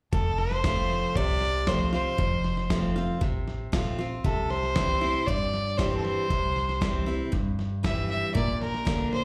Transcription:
0.13 upright bass F1, steel-string acoustic guitar F2, fiddle A4, kick, snare
0.38 fiddle C5, snare
0.51 snare
0.64 steel-string acoustic guitar F3 A3 C4 F4, kick, snare, hi-hat pedal
0.90 snare
1.16 upright bass C2, steel-string acoustic guitar C3, fiddle D5, kick, snare
1.41 snare
1.67 steel-string acoustic guitar F3 A3 C4 F4, fiddle C5, kick, snare, hi-hat pedal
1.93 steel-string acoustic guitar C4 F4, fiddle C5, snare
2.18 upright bass F1, steel-string acoustic guitar F2, kick, snare
2.44 snare
2.57 snare
2.70 steel-string acoustic guitar F3 A3 C4 F4, kick, snare, hi-hat pedal
2.96 steel-string acoustic guitar C4 F4, snare
3.21 upright bass A1, steel-string acoustic guitar C3, kick, snare
3.48 snare
3.72 upright bass A#1, steel-string acoustic guitar F3 A3 C4 F4, kick, snare, hi-hat pedal
3.98 steel-string acoustic guitar C4 F4, snare
4.24 upright bass C2, steel-string acoustic guitar C3, fiddle A4, kick, snare
4.50 fiddle C5, snare
4.63 snare
4.75 steel-string acoustic guitar E3 G3 C4 E4, kick, snare, hi-hat pedal
5.01 steel-string acoustic guitar C4 E4, snare
5.26 upright bass G2, steel-string acoustic guitar G2, fiddle D5, kick, snare
5.54 snare
5.77 steel-string acoustic guitar E3 G3 C4 E4, fiddle C5, kick, snare, hi-hat pedal
5.97 fiddle A4
6.03 fiddle C5, snare
6.30 upright bass C2, steel-string acoustic guitar C3, kick, snare
6.56 snare
6.69 snare
6.81 steel-string acoustic guitar E3 G3 C4 E4, kick, snare, hi-hat pedal
7.06 steel-string acoustic guitar C4 E4, snare
7.32 steel-string acoustic guitar G2, upright bass G2, kick, snare
7.59 snare
7.83 steel-string acoustic guitar E3 G3 C4 E4, fiddle E5, kick, snare, hi-hat pedal
8.10 fiddle E5, snare
8.35 upright bass A#1, steel-string acoustic guitar A#2, fiddle D5, kick, snare
8.62 fiddle A#4, snare
8.74 snare
8.85 steel-string acoustic guitar D3 A#3 D4 F4, kick, snare, hi-hat pedal
9.13 fiddle C5, snare

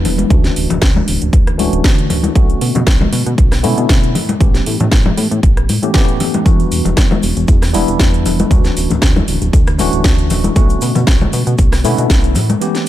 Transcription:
Already playing: tine electric piano E3 G3 B3 D4 E4
0.05 analog synth bass E1, open hi-hat, low conga
0.18 closed hi-hat, high conga
0.30 analog synth bass D2, tine electric piano E3 A3 C#4 D4 F#4, kick, closed hi-hat
0.44 snare, closed hi-hat
0.56 analog synth bass D1, open hi-hat
0.70 analog synth bass D1, closed hi-hat, low conga
0.82 analog synth bass D2, kick, cross-stick, snare, closed hi-hat
0.96 high conga, low conga
1.08 analog synth bass D1, open hi-hat
1.22 analog synth bass D1, closed hi-hat
1.33 analog synth bass D2, kick, closed hi-hat
1.47 cross-stick, closed hi-hat
1.58 analog synth bass D1, tine electric piano E3 A3 C#4 D4 F#4, open hi-hat, high conga
1.73 analog synth bass D1, closed hi-hat
1.84 analog synth bass D2, kick, snare, closed hi-hat
1.99 closed hi-hat
2.10 analog synth bass D1, open hi-hat, low conga
2.23 closed hi-hat, high conga
2.35 analog synth bass B1, tine electric piano D3 A3 B3 C#4 F#4, kick, closed hi-hat
2.50 closed hi-hat
2.61 analog synth bass B2, open hi-hat
2.75 analog synth bass B2, closed hi-hat, low conga
2.87 analog synth bass B1, kick, cross-stick, snare, closed hi-hat
3.01 high conga, low conga
3.12 analog synth bass B2, open hi-hat
3.26 analog synth bass B2, closed hi-hat
3.38 analog synth bass B1, kick, closed hi-hat
3.52 cross-stick, snare, open hi-hat
3.63 analog synth bass B2, tine electric piano D3 A3 B3 C#4 E4, open hi-hat, high conga
3.77 analog synth bass B2, closed hi-hat
3.89 analog synth bass B1, kick, snare, closed hi-hat
4.04 closed hi-hat
4.15 analog synth bass A2, open hi-hat, low conga
4.29 closed hi-hat, high conga
4.40 analog synth bass A1, tine electric piano E3 A3 B3 C#4 G4, kick, closed hi-hat
4.54 snare, closed hi-hat
4.66 analog synth bass A2, open hi-hat
4.80 analog synth bass A2, closed hi-hat, low conga
4.92 analog synth bass A1, kick, cross-stick, snare, closed hi-hat
5.06 high conga, low conga
5.17 analog synth bass A2, open hi-hat
5.31 analog synth bass A2, closed hi-hat
5.43 analog synth bass A1, kick, closed hi-hat
5.57 cross-stick, closed hi-hat
5.68 analog synth bass A2, open hi-hat, high conga
5.82 analog synth bass A2, tine electric piano E3 A3 B3 C#4 G4, closed hi-hat
5.94 analog synth bass A1, tine electric piano E3 A3 B3 C#4 G4, kick, snare, closed hi-hat
6.08 closed hi-hat
6.20 analog synth bass A2, open hi-hat, low conga
6.34 closed hi-hat, high conga
6.45 analog synth bass E2, tine electric piano E3 G3 B3 D4 F#4, kick, closed hi-hat, shaker
6.60 closed hi-hat, shaker
6.71 analog synth bass E1, open hi-hat, shaker
6.85 analog synth bass E1, closed hi-hat, low conga, shaker
6.97 analog synth bass E2, kick, cross-stick, snare, closed hi-hat, shaker
7.11 high conga, low conga, shaker
7.23 analog synth bass E1, open hi-hat, shaker
7.37 analog synth bass E1, closed hi-hat, shaker
7.48 analog synth bass E2, kick, closed hi-hat, shaker
7.62 cross-stick, snare, open hi-hat, shaker
7.73 analog synth bass E1, tine electric piano E3 G3 B3 D4 E4, open hi-hat, high conga, shaker
7.88 analog synth bass E1, closed hi-hat, shaker
7.99 analog synth bass E2, kick, snare, closed hi-hat, shaker
8.14 closed hi-hat, shaker
8.25 analog synth bass E1, open hi-hat, low conga, shaker
8.39 closed hi-hat, high conga, shaker
8.50 analog synth bass D2, tine electric piano E3 A3 C#4 D4 F#4, kick, closed hi-hat, shaker
8.64 snare, closed hi-hat, shaker
8.76 analog synth bass D1, open hi-hat, shaker
8.90 analog synth bass D1, closed hi-hat, low conga, shaker
9.02 analog synth bass D2, kick, cross-stick, snare, closed hi-hat, shaker
9.16 high conga, low conga, shaker
9.28 analog synth bass D1, open hi-hat, shaker
9.41 analog synth bass D1, closed hi-hat, shaker
9.53 analog synth bass D2, kick, closed hi-hat, shaker
9.67 cross-stick, closed hi-hat, shaker
9.78 analog synth bass D1, tine electric piano E3 A3 C#4 D4 F#4, open hi-hat, high conga, shaker
9.93 analog synth bass D1, closed hi-hat, shaker
10.04 analog synth bass D2, kick, snare, closed hi-hat, shaker
10.18 closed hi-hat, shaker
10.30 analog synth bass D1, open hi-hat, low conga, shaker
10.44 closed hi-hat, high conga, shaker
10.55 analog synth bass B1, tine electric piano D3 A3 B3 C#4 F#4, kick, closed hi-hat, shaker
10.70 closed hi-hat, shaker
10.81 analog synth bass B2, open hi-hat, shaker
10.95 analog synth bass B2, closed hi-hat, low conga, shaker
11.07 analog synth bass B1, kick, cross-stick, snare, closed hi-hat, shaker
11.21 high conga, low conga, shaker
11.33 analog synth bass B2, open hi-hat, shaker
11.46 analog synth bass B2, closed hi-hat, shaker
11.58 analog synth bass B1, kick, closed hi-hat, shaker
11.72 cross-stick, snare, open hi-hat, shaker
11.84 analog synth bass B2, tine electric piano D3 A3 B3 C#4 E4, open hi-hat, high conga, shaker
11.97 analog synth bass B2, closed hi-hat, shaker
12.10 analog synth bass B1, kick, snare, closed hi-hat, shaker
12.23 closed hi-hat, shaker
12.35 analog synth bass A2, open hi-hat, low conga, shaker
12.49 closed hi-hat, high conga, shaker
12.60 tine electric piano E3 A3 B3 C#4 G4, closed hi-hat, shaker
12.75 snare, closed hi-hat, shaker

